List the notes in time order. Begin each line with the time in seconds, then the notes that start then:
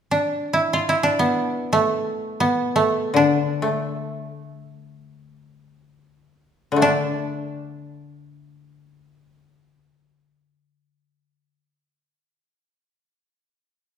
0.11 D4
0.53 E4
0.73 F4
0.89 E4
1.03 D4
1.19 B3
1.73 A3
2.40 B3
2.76 A3
3.14 D3 D4
3.62 A3
6.72 D3
6.76 A3
6.82 D4